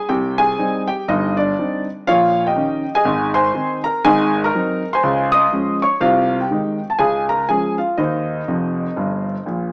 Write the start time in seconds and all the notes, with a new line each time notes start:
0.09 C2 C3 G4 G5
0.38 G#4 G#5
0.58 G3 C4 D#4
0.88 G4 G5
1.08 G1 G2 D#4 D#5
1.37 D4 D5
1.58 G3 C4 D#4
2.07 A#1 A#2 F4 C#5 F5
2.47 G4 D#5 G5
2.56 D#3 C#4 D#4
2.95 G#4 D#5 G#5
3.05 G#1 G#2
3.34 C5 G#5 C6
3.54 D#3 C4 D#4
3.84 A#4 A#5
4.05 G#1 G#2 G#4 D#5 G#5
4.44 A#4 A#5
4.54 F#3 C4 D#4
4.93 C5 G#5 C6
5.03 C#2 C#3
5.32 D#5 C6 D#6
5.53 F3 G#3 C#4
5.82 C#5 C#6
6.01 C2 C3 F4 C5 F5
6.41 G4 G5
6.51 D#3 G#3 D#4
6.90 A5
6.99 C#2 C#3 G#4 G#5
7.29 A#4 A#5
7.49 F3 G#3 C#4 G#4 G#5
7.78 F4 F5
7.98 D#2 D#3 D#4 C5 D#5
8.48 F1 F2
8.96 G1 G2
9.46 A#1 A#2